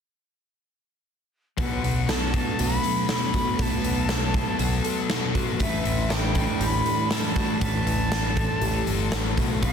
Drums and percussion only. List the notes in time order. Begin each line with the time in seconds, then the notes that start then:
1.58 kick, open hi-hat
1.84 open hi-hat
2.09 snare, open hi-hat
2.34 kick, open hi-hat
2.59 open hi-hat
2.84 open hi-hat
3.09 snare, open hi-hat
3.34 kick, open hi-hat
3.59 kick, open hi-hat
3.84 open hi-hat
4.09 snare, open hi-hat
4.34 kick, open hi-hat
4.59 open hi-hat
4.85 open hi-hat
5.10 snare, open hi-hat
5.35 kick, open hi-hat
5.60 kick, open hi-hat
5.85 open hi-hat
6.10 snare, open hi-hat
6.35 kick, open hi-hat
6.61 open hi-hat
6.86 open hi-hat
7.11 snare, open hi-hat
7.36 kick, open hi-hat
7.61 kick, open hi-hat
7.87 open hi-hat
8.12 snare, open hi-hat
8.37 kick, open hi-hat
8.62 open hi-hat
8.87 open hi-hat
9.12 snare, open hi-hat
9.38 kick, open hi-hat
9.63 kick, open hi-hat